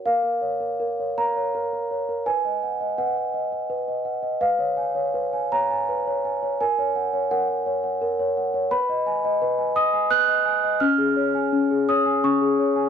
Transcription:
\new Staff \with { instrumentName = "Celesta" } { \time 3/4 \key ais \phrygian \tempo 4 = 84 << { eis''4. ais''4. | gis''4 fis''4. r8 | eis''4. ais''4. | gis''4 fis''4. r8 |
b''4. dis'''8 fis'''4 | eis'''4. dis'''8 cis'''4 | } \\ { ais'16 ais'16 cis''16 ais'16 ais'16 cis''16 ais'16 cis''16 ais'16 ais'16 cis''16 ais'16 | b'16 dis''16 fis''16 dis''16 b'16 fis''16 dis''16 fis''16 b'16 dis''16 fis''16 dis''16 | b'16 cis''16 gis''16 cis''16 b'16 gis''16 cis''16 gis''16 b'16 cis''16 gis''16 cis''16 | ais'16 cis''16 fis''16 cis''16 ais'16 fis''16 cis''16 fis''16 ais'16 cis''16 fis''16 cis''16 |
b'16 dis''16 gis''16 dis''16 b'16 gis''16 dis''16 gis''16 b'16 dis''16 gis''16 dis''16 | cis'16 gis'16 cis''16 gis''16 cis'16 gis'16 cis''16 gis''16 cis'16 gis'16 cis''16 gis''16 | } >> }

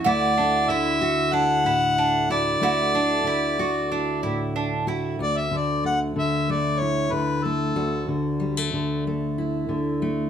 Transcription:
<<
  \new Staff \with { instrumentName = "Harmonica" } { \time 4/4 \key d \major \tempo 4 = 93 d''4 e''4 fis''4. d''8~ | d''2. r4 | d''16 e''16 d''8 fis''8 e''8 d''8 cis''8 b'8 a'8~ | a'8 r2. r8 | }
  \new Staff \with { instrumentName = "Mandolin" } { \time 4/4 \key d \major fis'1 | fis'2.~ fis'8 r8 | r1 | r1 | }
  \new Staff \with { instrumentName = "Mandolin" } { \time 4/4 \key d \major e'8 d'8 e'8 fis'8 d'8 e'8 d'8 e'8 | e'8 d'8 e'8 fis'8 d'8 e'8 d'8 e'8 | r1 | r1 | }
  \new Staff \with { instrumentName = "Steel-string acoustic guitar" } { \time 4/4 \key d \major << { <a e'>8 e'4 fis'8 e'4. fis'8 | a8 e'4 fis'8 e'4. fis'8 | fis'4 a4 a8 e'4 a8 | fis'4 g16 a8. a8 e'4 a8 | } \\ { d,4 d4. a,4. | d,4 d4. a,4. | d,8 d4 d4. d4 | d,8 d4 d4. d4 | } >> }
>>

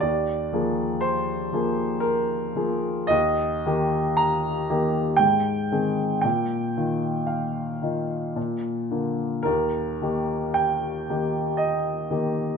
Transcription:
<<
  \new Staff \with { instrumentName = "Grand piano" } { \time 3/4 \key ees \major \tempo 4 = 57 d''4 c''4 bes'4 | ees''4 bes''4 g''4 | g''4 f''4 r4 | bes'4 g''4 ees''4 | }
  \new Staff \with { instrumentName = "Grand piano" } { \time 3/4 \key ees \major ees,8 <f bes aes'>4 <f bes aes'>4 <f bes aes'>8 | ees,8 <ees bes g'>4 <ees bes g'>8 aes,8 <ees c' aes'>8 | bes,8 <ees ees' f'>4 <ees ees' f'>8 bes,8 <d bes f'>8 | ees,8 <ees bes g'>4 <ees bes g'>4 <ees bes g'>8 | }
>>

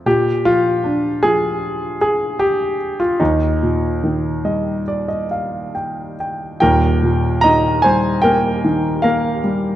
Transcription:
<<
  \new Staff \with { instrumentName = "Grand piano" } { \time 4/4 \key ees \major \tempo 4 = 74 << { r1 | r4. ees''8 d''16 ees''16 f''8 g''8 g''8 | bes'4 ees''8 c''8 bes'4 bes'4 | } \\ { g'8 f'4 aes'4 aes'8 g'8. f'16 | ees'2 r2 | g''4 bes''8 aes''8 g''4 f''4 | } >> }
  \new Staff \with { instrumentName = "Grand piano" } { \clef bass \time 4/4 \key ees \major bes,8 f8 d'8 f2 r8 | ees,8 bes,8 ees8 g2 r8 | <ees,, ees,>8 bes,8 ees8 g8 bes8 ees8 bes8 g8 | }
>>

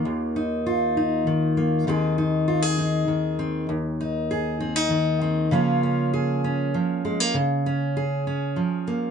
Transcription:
\new Staff \with { instrumentName = "Steel-string acoustic guitar" } { \time 3/4 \key aes \mixolydian \tempo 4 = 99 << { f'8 ees'8 f'8 ees'4 bes8 | <ees c' ees' aes'>8 ees'8 f'16 aes'16 ees'4 c'8 | r8 ees'8 aes'8 c'16 ees'8. c'8 | <f bes des' f'>8 des'8 aes'8 des'4 aes16 bes16 |
r8 des'8 aes'8 des'4 bes8 | } \\ { <ees, ees>2 ees4 | ees,2 ees4 | ees,2 ees4 | des2 f4 |
des2 f4 | } >> }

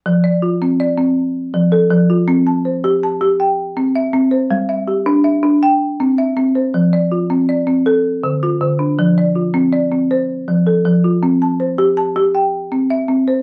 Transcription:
\new Staff \with { instrumentName = "Marimba" } { \time 12/8 \key f \major \tempo 4. = 107 << { r8 d''8 f'4 d''4. r4 a'4 f'8~ | f'8 a''8 c''4 a''4 g''4. e''4 c''8~ | c''8 e''8 g'4 e''4 g''4. e''4 c''8~ | c''8 d''8 f'4 d''4 a'4. f'4 d'8~ |
d'8 d''8 f'4 d''4 c''4. a'4 f'8~ | f'8 a''8 c''4 a''4 g''4. e''4 c''8 | } \\ { f4 r8 c'4 c'4 r8 f4 f4 | c'4 r8 g'4 g'4 r8 c'4 c'4 | g4 r8 d'4 d'8 r4 c'4 c'4 | f4 r8 c'4 c'8 r4 d4 d4 |
f4 r8 c'4 c'4 r8 f4 f4 | c'4 r8 g'4 g'4 r8 c'4 c'4 | } >> }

